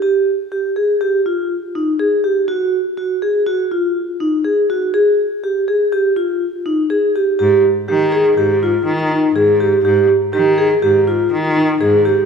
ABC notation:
X:1
M:5/4
L:1/8
Q:1/4=122
K:Ebmix
V:1 name="Vibraphone"
G2 G A G F2 E A G | _G2 G A G F2 E A G | A2 G A G F2 E A G | G2 G A G F2 E A G |
G2 G A G F2 E A G |]
V:2 name="Cello" clef=bass
z8 z2 | z8 z2 | z8 z2 | A,, z E,2 A,,2 E,2 A,,2 |
A,, z E,2 A,,2 E,2 A,,2 |]